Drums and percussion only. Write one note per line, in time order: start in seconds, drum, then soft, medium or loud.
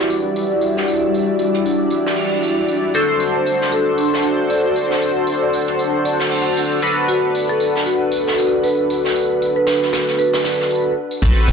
0.10 tambourine medium
0.36 tambourine medium
0.61 tambourine medium
0.77 snare soft
0.88 tambourine medium
1.14 tambourine medium
1.39 tambourine medium
1.55 closed hi-hat soft
1.66 tambourine medium
1.91 tambourine medium
2.07 snare medium
2.17 open hi-hat medium
2.43 tambourine medium
2.69 tambourine medium
2.94 tambourine medium
3.20 tambourine medium
3.47 tambourine medium
3.62 snare soft
3.73 tambourine medium
3.98 tambourine medium
4.14 snare soft
4.23 tambourine medium
4.50 tambourine medium
4.76 tambourine medium
4.91 snare soft
5.02 tambourine medium
5.27 tambourine medium
5.53 tambourine medium
5.68 closed hi-hat soft
5.79 tambourine medium
6.05 tambourine medium
6.20 snare medium
6.31 open hi-hat medium
6.57 tambourine medium
6.82 tambourine medium
7.09 tambourine medium
7.35 tambourine medium
7.60 tambourine medium
7.76 snare soft
7.86 tambourine medium
8.12 tambourine medium
8.28 snare soft
8.38 tambourine medium
8.64 tambourine medium
8.90 tambourine medium
9.05 snare soft
9.16 tambourine medium
9.42 tambourine medium
9.67 snare loud
9.67 tambourine medium
9.82 snare soft
9.93 snare loud
9.93 tambourine medium
10.08 snare soft
10.19 tambourine medium
10.34 snare loud
10.34 tambourine medium
10.44 snare loud
10.44 tambourine medium
10.60 snare soft
10.71 tambourine medium
11.11 tambourine medium
11.22 kick loud
11.22 tambourine medium
11.22 crash loud
11.48 open hi-hat loud
11.48 tambourine medium